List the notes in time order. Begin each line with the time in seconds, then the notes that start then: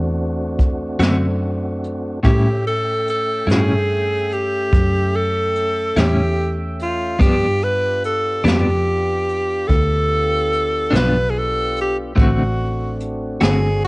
Already playing: E2 A3 C4 D4 F#4
0.59 kick, closed hi-hat
0.99 F#2 D3 A3 C4 F#4, snare, closed hi-hat
1.84 closed hi-hat
2.23 A2 G3 A3 C#4 E4 G4 E5 G5, kick, closed hi-hat
2.67 A4
3.07 A4, closed hi-hat
3.47 G2 A2 G3 C#4 E4 G#4, closed hi-hat
3.51 snare
4.32 G4, closed hi-hat
4.73 F#2, kick, closed hi-hat
5.16 A4
5.55 closed hi-hat
5.96 E2 A2 G3 C#4 E4 G4, snare, closed hi-hat
6.79 F4, closed hi-hat
7.19 G2 F3 B3 D4 F4 G4, kick, closed hi-hat
7.63 B4
8.04 A4, closed hi-hat
8.44 F2 G2 F3 B3 D4 G4, snare, closed hi-hat
9.29 closed hi-hat
9.68 D2 A4, kick, closed hi-hat
10.52 closed hi-hat
10.91 B1 G2 F3 B3 D4, closed hi-hat
10.95 B4, snare
11.30 G#4
11.39 A4
11.76 closed hi-hat
11.81 G4
12.15 A1 D3 A3 C4 D4 F#4, kick, closed hi-hat
12.22 F#4
13.00 closed hi-hat
13.41 G1 D3 A3 C4 F#4 G#4, snare, closed hi-hat
13.84 F#4